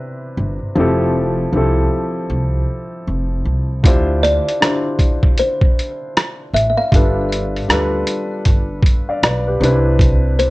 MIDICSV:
0, 0, Header, 1, 5, 480
1, 0, Start_track
1, 0, Tempo, 769231
1, 475, Time_signature, 4, 2, 24, 8
1, 6553, End_track
2, 0, Start_track
2, 0, Title_t, "Kalimba"
2, 0, Program_c, 0, 108
2, 2641, Note_on_c, 0, 74, 98
2, 3366, Note_on_c, 0, 72, 88
2, 3380, Note_off_c, 0, 74, 0
2, 3815, Note_off_c, 0, 72, 0
2, 4082, Note_on_c, 0, 76, 86
2, 4123, Note_off_c, 0, 76, 0
2, 4178, Note_on_c, 0, 76, 75
2, 4226, Note_on_c, 0, 77, 99
2, 4227, Note_off_c, 0, 76, 0
2, 5159, Note_off_c, 0, 77, 0
2, 6484, Note_on_c, 0, 72, 83
2, 6553, Note_off_c, 0, 72, 0
2, 6553, End_track
3, 0, Start_track
3, 0, Title_t, "Upright piano"
3, 0, Program_c, 1, 0
3, 0, Control_c, 1, 64, 127
3, 0, Note_on_c, 1, 48, 73
3, 0, Note_on_c, 1, 60, 67
3, 0, Note_on_c, 1, 62, 68
3, 0, Note_on_c, 1, 64, 67
3, 0, Note_on_c, 1, 71, 81
3, 470, Note_on_c, 1, 53, 88
3, 477, Note_off_c, 1, 60, 0
3, 477, Note_on_c, 1, 60, 70
3, 483, Note_off_c, 1, 64, 0
3, 483, Note_on_c, 1, 64, 77
3, 484, Note_off_c, 1, 48, 0
3, 484, Control_c, 1, 64, 0
3, 485, Note_off_c, 1, 62, 0
3, 485, Note_off_c, 1, 71, 0
3, 490, Note_on_c, 1, 67, 77
3, 498, Note_on_c, 1, 69, 89
3, 611, Control_c, 1, 64, 127
3, 895, Note_off_c, 1, 53, 0
3, 899, Note_off_c, 1, 60, 0
3, 902, Note_off_c, 1, 64, 0
3, 906, Note_off_c, 1, 67, 0
3, 910, Note_off_c, 1, 69, 0
3, 949, Note_on_c, 1, 53, 72
3, 958, Note_on_c, 1, 60, 63
3, 965, Note_on_c, 1, 64, 67
3, 971, Note_on_c, 1, 67, 66
3, 977, Note_on_c, 1, 69, 89
3, 1786, Note_off_c, 1, 53, 0
3, 1791, Note_off_c, 1, 60, 0
3, 1794, Note_off_c, 1, 64, 0
3, 1797, Note_off_c, 1, 67, 0
3, 1800, Note_off_c, 1, 69, 0
3, 2391, Note_on_c, 1, 50, 74
3, 2396, Note_on_c, 1, 62, 74
3, 2401, Note_on_c, 1, 64, 75
3, 2404, Control_c, 1, 64, 0
3, 2408, Note_on_c, 1, 65, 76
3, 2412, Note_on_c, 1, 67, 74
3, 2419, Note_on_c, 1, 72, 91
3, 2530, Control_c, 1, 64, 127
3, 2816, Note_off_c, 1, 50, 0
3, 2818, Note_off_c, 1, 62, 0
3, 2821, Note_off_c, 1, 64, 0
3, 2825, Note_off_c, 1, 65, 0
3, 2827, Note_off_c, 1, 67, 0
3, 2830, Note_off_c, 1, 72, 0
3, 2872, Note_on_c, 1, 50, 66
3, 2875, Note_on_c, 1, 62, 61
3, 2881, Note_on_c, 1, 64, 57
3, 2887, Note_on_c, 1, 65, 56
3, 2891, Note_on_c, 1, 67, 55
3, 2896, Note_on_c, 1, 72, 72
3, 3708, Note_off_c, 1, 50, 0
3, 3710, Note_off_c, 1, 62, 0
3, 3713, Note_off_c, 1, 64, 0
3, 3715, Note_off_c, 1, 65, 0
3, 3718, Note_off_c, 1, 67, 0
3, 3720, Note_off_c, 1, 72, 0
3, 4314, Note_on_c, 1, 55, 70
3, 4322, Note_on_c, 1, 62, 66
3, 4323, Control_c, 1, 64, 0
3, 4329, Note_on_c, 1, 65, 67
3, 4334, Note_on_c, 1, 69, 61
3, 4341, Note_on_c, 1, 71, 73
3, 4422, Control_c, 1, 64, 127
3, 4737, Note_off_c, 1, 55, 0
3, 4742, Note_off_c, 1, 62, 0
3, 4745, Note_off_c, 1, 65, 0
3, 4747, Note_off_c, 1, 69, 0
3, 4751, Note_off_c, 1, 71, 0
3, 4792, Note_on_c, 1, 55, 68
3, 4799, Note_on_c, 1, 62, 66
3, 4807, Note_on_c, 1, 65, 64
3, 4813, Note_on_c, 1, 69, 72
3, 4820, Note_on_c, 1, 71, 82
3, 5524, Note_off_c, 1, 69, 0
3, 5528, Note_off_c, 1, 71, 0
3, 5628, Note_off_c, 1, 55, 0
3, 5632, Note_off_c, 1, 62, 0
3, 5635, Note_off_c, 1, 65, 0
3, 5671, Note_on_c, 1, 77, 64
3, 5675, Note_on_c, 1, 74, 53
3, 5755, Note_off_c, 1, 77, 0
3, 5757, Note_off_c, 1, 74, 0
3, 5766, Note_on_c, 1, 74, 65
3, 5769, Note_on_c, 1, 71, 56
3, 5900, Note_off_c, 1, 74, 0
3, 5902, Note_off_c, 1, 71, 0
3, 5911, Note_on_c, 1, 71, 53
3, 5914, Note_on_c, 1, 67, 53
3, 5991, Note_on_c, 1, 48, 73
3, 5998, Note_on_c, 1, 60, 71
3, 6004, Control_c, 1, 64, 0
3, 6006, Note_on_c, 1, 62, 73
3, 6009, Note_on_c, 1, 64, 78
3, 6010, Note_off_c, 1, 71, 0
3, 6019, Note_on_c, 1, 71, 85
3, 6111, Control_c, 1, 64, 127
3, 6136, Note_off_c, 1, 67, 0
3, 6553, Note_off_c, 1, 48, 0
3, 6553, Note_off_c, 1, 60, 0
3, 6553, Note_off_c, 1, 62, 0
3, 6553, Note_off_c, 1, 64, 0
3, 6553, Note_off_c, 1, 71, 0
3, 6553, End_track
4, 0, Start_track
4, 0, Title_t, "Upright bass"
4, 0, Program_c, 2, 32
4, 233, Note_on_c, 2, 31, 87
4, 360, Note_off_c, 2, 31, 0
4, 472, Note_on_c, 2, 29, 93
4, 887, Note_off_c, 2, 29, 0
4, 953, Note_on_c, 2, 36, 80
4, 1161, Note_off_c, 2, 36, 0
4, 1433, Note_on_c, 2, 36, 90
4, 1641, Note_off_c, 2, 36, 0
4, 1919, Note_on_c, 2, 29, 84
4, 2124, Note_off_c, 2, 29, 0
4, 2155, Note_on_c, 2, 36, 84
4, 2362, Note_off_c, 2, 36, 0
4, 2397, Note_on_c, 2, 38, 94
4, 2729, Note_off_c, 2, 38, 0
4, 4077, Note_on_c, 2, 33, 84
4, 4202, Note_off_c, 2, 33, 0
4, 4317, Note_on_c, 2, 31, 93
4, 4730, Note_off_c, 2, 31, 0
4, 4798, Note_on_c, 2, 38, 82
4, 5003, Note_off_c, 2, 38, 0
4, 5279, Note_on_c, 2, 31, 87
4, 5484, Note_off_c, 2, 31, 0
4, 5758, Note_on_c, 2, 35, 75
4, 5964, Note_off_c, 2, 35, 0
4, 5994, Note_on_c, 2, 36, 94
4, 6534, Note_off_c, 2, 36, 0
4, 6553, End_track
5, 0, Start_track
5, 0, Title_t, "Drums"
5, 2395, Note_on_c, 9, 36, 101
5, 2405, Note_on_c, 9, 42, 76
5, 2457, Note_off_c, 9, 36, 0
5, 2467, Note_off_c, 9, 42, 0
5, 2649, Note_on_c, 9, 42, 56
5, 2712, Note_off_c, 9, 42, 0
5, 2798, Note_on_c, 9, 42, 39
5, 2861, Note_off_c, 9, 42, 0
5, 2884, Note_on_c, 9, 37, 102
5, 2889, Note_on_c, 9, 42, 79
5, 2946, Note_off_c, 9, 37, 0
5, 2951, Note_off_c, 9, 42, 0
5, 3112, Note_on_c, 9, 36, 85
5, 3115, Note_on_c, 9, 42, 64
5, 3174, Note_off_c, 9, 36, 0
5, 3177, Note_off_c, 9, 42, 0
5, 3262, Note_on_c, 9, 36, 83
5, 3324, Note_off_c, 9, 36, 0
5, 3354, Note_on_c, 9, 42, 75
5, 3417, Note_off_c, 9, 42, 0
5, 3503, Note_on_c, 9, 36, 93
5, 3565, Note_off_c, 9, 36, 0
5, 3613, Note_on_c, 9, 42, 44
5, 3675, Note_off_c, 9, 42, 0
5, 3848, Note_on_c, 9, 42, 73
5, 3850, Note_on_c, 9, 37, 88
5, 3911, Note_off_c, 9, 42, 0
5, 3913, Note_off_c, 9, 37, 0
5, 4095, Note_on_c, 9, 42, 62
5, 4157, Note_off_c, 9, 42, 0
5, 4317, Note_on_c, 9, 36, 109
5, 4330, Note_on_c, 9, 42, 78
5, 4380, Note_off_c, 9, 36, 0
5, 4392, Note_off_c, 9, 42, 0
5, 4569, Note_on_c, 9, 42, 52
5, 4632, Note_off_c, 9, 42, 0
5, 4720, Note_on_c, 9, 42, 41
5, 4782, Note_off_c, 9, 42, 0
5, 4804, Note_on_c, 9, 37, 90
5, 4809, Note_on_c, 9, 42, 78
5, 4867, Note_off_c, 9, 37, 0
5, 4871, Note_off_c, 9, 42, 0
5, 5035, Note_on_c, 9, 42, 65
5, 5097, Note_off_c, 9, 42, 0
5, 5274, Note_on_c, 9, 42, 69
5, 5278, Note_on_c, 9, 36, 77
5, 5337, Note_off_c, 9, 42, 0
5, 5340, Note_off_c, 9, 36, 0
5, 5507, Note_on_c, 9, 36, 93
5, 5530, Note_on_c, 9, 42, 52
5, 5570, Note_off_c, 9, 36, 0
5, 5592, Note_off_c, 9, 42, 0
5, 5761, Note_on_c, 9, 42, 75
5, 5763, Note_on_c, 9, 37, 87
5, 5823, Note_off_c, 9, 42, 0
5, 5825, Note_off_c, 9, 37, 0
5, 6012, Note_on_c, 9, 42, 55
5, 6075, Note_off_c, 9, 42, 0
5, 6235, Note_on_c, 9, 36, 111
5, 6246, Note_on_c, 9, 42, 75
5, 6297, Note_off_c, 9, 36, 0
5, 6308, Note_off_c, 9, 42, 0
5, 6487, Note_on_c, 9, 42, 59
5, 6550, Note_off_c, 9, 42, 0
5, 6553, End_track
0, 0, End_of_file